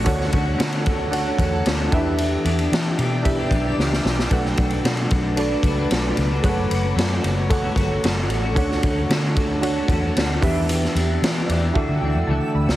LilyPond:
<<
  \new Staff \with { instrumentName = "Ambient pad" } { \time 4/4 \key e \dorian \tempo 4 = 113 fis''2.~ fis''8 <d'' g'' e'''>8~ | <d'' g'' e'''>1 | <b' a'' d'''>1 | <a' fis'' cis'''>1 |
r2. r8 d''8~ | d''1 | }
  \new Staff \with { instrumentName = "Synth keys" } { \time 4/4 \key e \dorian << { r1 | r1 | r1 | r1 |
r1 | r4. d''8 fis''8 g''8 a''8 b''8 | } \\ { <d' fis' a' cis'' fis''>4. r8 <d' fis' a' cis'' fis''>4. <d' e' g' b' e''>8~ | <d' e' g' b' e''>4 r4 <d' e' g' b' e''>4. r8 | <d' fis' a' b' fis''>4. r8 <d' fis' a' b' d''>4. r8 | <gis' a' cis'' fis''>4. r8 <a' cis'' fis''>4. r8 |
<d' fis' a' cis'' fis''>4. r8 <d' fis' a' cis'' fis''>4. <d' e' g' b' e''>8~ | <d' e' g' b' e''>4 r4 <d' e' fis' a' e''>4. r8 | } >> }
  \new Staff \with { instrumentName = "Clean electric guitar" } { \time 4/4 \key e \dorian <d a cis' fis'>8 <d a cis' fis'>16 <a cis' fis'>16 <d a cis' fis'>8 <d a cis' fis'>8. <a cis' fis'>16 <d a cis' fis'>8 <d a cis' fis'>8 <e b d' g'>8~ | <e b d' g'>8 <e b d' g'>16 <b d' g'>16 <e b d' g'>8 <e b d' g'>8. <b d' g'>16 <e b d' g'>16 <b d' g'>16 <e b d' g'>8. <b d' g'>16 | <b, fis a d' fis'>8 <fis a d' fis'>16 <a d' fis'>16 <b, fis a d' fis'>8 <fis a d' fis'>8. <a d' fis'>16 <fis a d' fis'>16 <a d' fis'>16 <b, fis a d' fis'>8. <a d' fis'>16 | <fis a cis' fis'>8 <fis a cis' fis'>16 <a cis' fis'>16 <fis a cis' fis'>8 <fis a cis' fis'>8. <a cis' fis'>16 <fis a cis' fis'>16 <a cis' fis'>16 <fis a cis' fis'>16 <a cis' fis'>8 <a cis' fis'>16 |
<d a cis' fis'>8 <d a cis' fis'>16 <a cis' fis'>16 <d a cis' fis'>8 <d a cis' fis'>8. <a cis' fis'>16 <d a cis' fis'>16 <a cis' fis'>16 <d a cis' fis'>16 <a cis' fis'>16 <e b d' g'>8~ | <e b d' g'>8 <e b d' g'>16 <b d' g'>16 <e b d' g'>8 <e b d' g'>8 <d e a d' fis'>16 <a d' fis'>16 <e a d' fis'>16 <a d' fis'>16 <d e a d' fis'>8. <a d' fis'>16 | }
  \new Staff \with { instrumentName = "Fingered electric bass" } { \clef bass \time 4/4 \key e \dorian d,8 d,8 r8 d,4 e,8 d,8 e,8~ | e,8 e,8 e8 b,4 b,,8 cis,8 b,,8 | b,,8 b,,8 b,8 b,,4 cis,8 b,,8 cis,8 | fis,,8 fis,,8 fis,8 fis,,4 g,,8 fis,,8 a,,8 |
d,8 d,8 d8 d,4 e,8 d,8 e,8~ | e,8 e,8 e8 e,8 d,16 d16 d,16 e,16 cis,16 r16 d,16 cis,16 | }
  \new DrumStaff \with { instrumentName = "Drums" } \drummode { \time 4/4 <hhp bd cymr>16 sn16 <bd cymr>8 <cymr sn>16 cymr16 <bd cymr>8 cymr8 <bd cymr>8 <cymr sn>8 <bd cymr>8 | cymr8 cymr16 cymr16 <cymr sn>8 cymr8 <bd cymr>8 <bd cymr>8 sn16 sn16 sn16 sn16 | <bd cymr>16 sn16 <bd cymr>16 cymr16 <cymr sn>16 cymr16 <bd cymr>8 cymr8 <bd cymr>8 <cymr sn>8 cymr8 | <bd cymr>8 cymr8 <cymr sn>8 cymr8 <bd cymr>8 <bd cymr>8 <cymr sn>8 cymr8 |
<bd cymr>16 sn16 <bd cymr>8 <cymr sn>8 <bd cymr>8 cymr8 <bd cymr>8 <cymr sn>8 <hho bd cymr>8 | <hhp cymr>16 sn16 cymr8 <cymr sn>8 cymr8 bd4 r8. sn16 | }
>>